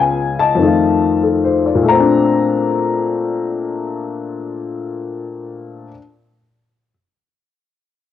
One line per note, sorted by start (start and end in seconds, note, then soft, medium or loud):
0.00 0.58 C#2 soft
0.00 0.59 C#3 soft
0.00 0.60 B3 soft
0.00 0.61 F4 medium
0.00 0.35 F5 medium
0.00 0.41 G#5 medium
0.40 1.63 D#5 medium
0.40 1.19 A5 medium
0.55 1.85 F2 soft
0.55 1.87 D#3 soft
0.62 1.82 A3 soft
0.66 1.90 F4 medium
1.23 1.63 A4 soft
1.44 1.78 C5 soft
1.66 1.99 D5 soft
1.75 5.86 A#2 medium
1.83 5.90 A3 soft
1.89 5.95 C4 medium
1.89 5.89 A#5 medium
2.00 5.99 D4 medium